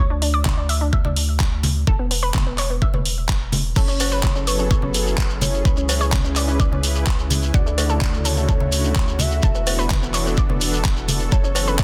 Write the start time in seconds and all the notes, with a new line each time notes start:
0.00 D2
0.10 D4
0.22 D4, open hi-hat
0.34 D5
0.45 D4, kick, clap, high conga
0.57 D4
0.69 E5, open hi-hat
0.81 D4
0.93 E5, kick
1.05 D4, high conga
1.16 open hi-hat
1.40 kick, clap
1.63 open hi-hat, high conga
1.87 E1 A4, kick
1.99 B3
2.11 B3, open hi-hat
2.23 B4
2.34 B3, kick, clap, high conga
2.46 B3
2.58 C#5, clap, open hi-hat
2.70 B3
2.82 E5, kick
2.94 B3, high conga
3.05 open hi-hat
3.29 kick, clap
3.52 open hi-hat, high conga
3.76 F#1 F#3 C#4 E4 G#4 A4 C#5, kick, crash, shekere
3.88 C#4, shekere
4.00 C#4, open hi-hat, cowbell, shekere
4.11 B4, shekere
4.23 C#4, kick, clap, high conga, shekere
4.35 C#4, shekere
4.47 B4 C#5, open hi-hat, shekere
4.59 C#4, shekere
4.71 C#5, kick, shekere
4.82 C#4, high conga
4.94 open hi-hat, shekere
5.07 shekere
5.18 kick, clap, shekere
5.30 shekere
5.41 C#5, open hi-hat, high conga, shekere
5.54 shekere
5.65 C#2 C#3 B4, kick, shekere
5.77 C#4, shekere
5.89 C#4, open hi-hat, cowbell, shekere
6.01 C#5, shekere
6.12 C#4, kick, clap, high conga, shekere
6.24 C#4, shekere
6.36 D5, clap, open hi-hat, shekere
6.48 C#4, shekere
6.60 D5, kick, shekere
6.72 C#4, high conga
6.83 open hi-hat, shekere
6.95 shekere
7.07 kick, clap, shekere
7.19 shekere
7.30 open hi-hat, high conga, shekere
7.42 shekere
7.54 D2 C#3 D3 A3 F#4 D5, kick, shekere
7.66 A3, shekere
7.78 A3, open hi-hat, cowbell, shekere
7.89 A4, shekere
8.01 A3, kick, clap, high conga, shekere
8.13 A3, shekere
8.25 A4 C#5, open hi-hat, shekere
8.37 A3, shekere
8.49 A4, kick, shekere
8.60 A3, high conga
8.72 open hi-hat, shekere
8.84 shekere
8.96 kick, clap, shekere
9.08 shekere
9.19 E5, open hi-hat, high conga, shekere
9.31 shekere
9.42 E1 E3 B3 D4 A4, kick, shekere
9.55 B3, shekere
9.67 B3, open hi-hat, cowbell, shekere
9.79 B4, shekere
9.90 B3, kick, clap, high conga, shekere
10.02 B3, shekere
10.14 C#5, clap, open hi-hat, shekere
10.26 B3, shekere
10.37 D5, kick, shekere
10.50 B3, high conga
10.61 open hi-hat, shekere
10.73 shekere
10.85 kick, clap, shekere
10.97 shekere
11.08 open hi-hat, high conga, shekere
11.20 shekere
11.32 F#1 F#3 C#4 E4 G#4 A4 C#5, kick, shekere
11.44 C#4, shekere
11.55 C#4, open hi-hat, cowbell, shekere
11.67 B4, shekere
11.79 C#4, kick, clap, high conga, shekere